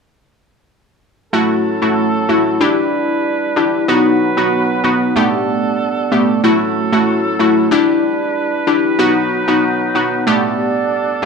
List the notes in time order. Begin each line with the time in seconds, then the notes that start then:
1.33 F#3 A3 C#4 E4 F#4 A4
1.82 A3 E4 F#4
2.29 A3 E4 F#4
2.61 G3 D4 E4 G4 B4
3.56 D4 E4 G4
3.88 F#3 B3 D#4 F#4 B4
4.37 B3 D#4 F#4
4.84 B3 D#4 F#4
5.16 G3 A3 B3 D4 G4 A4
6.12 A3 B3 G4
6.44 F#3 A3 C#4 E4 F#4 A4
6.92 A3 E4 F#4
7.39 A3 E4 F#4
7.71 G3 D4 E4 G4 B4
8.67 D4 E4 G4
8.99 F#3 B3 D#4 F#4
9.48 B3 D#4 F#4
9.95 B3 D#4 F#4
10.27 G3 A3 B3 D4 G4 A4